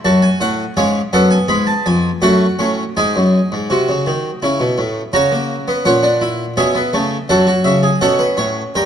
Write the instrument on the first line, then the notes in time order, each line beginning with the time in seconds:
harpsichord
Already playing: A3
0.05 F#2 F#4 A5
0.22 G#5
0.41 A2 F#5
0.77 G#2 C#4 G#4 F5
1.13 F#2 B3 A4 F#5
1.31 G#5
1.48 G#2 G#4 B5
1.67 A5
1.86 F2 G#5
2.22 F#2 A3 F#4 F#5
2.59 A2 C#4
2.97 G#2 D#4 G#4 G#5
3.16 F#2
3.52 G#2
3.70 C3 F#4
3.89 C#3
4.07 D#3
4.42 C#3 E4
4.60 B2
4.78 A2
5.13 C#3 C#4 F#4 A#5
5.32 A#3
5.68 B3
5.85 A#2 C#4 F#5
6.03 D4
6.21 E4
6.57 B2 C#4 G#4 E5
6.75 B3
6.93 C#3 A3
7.29 F#2 F#3 A4 F#5
7.47 F#4
7.64 C#3 E5
7.83 G#4
8.01 B2 C#4 A4 F#5
8.19 B4
8.37 A2 C#5
8.75 G2 A#4 G5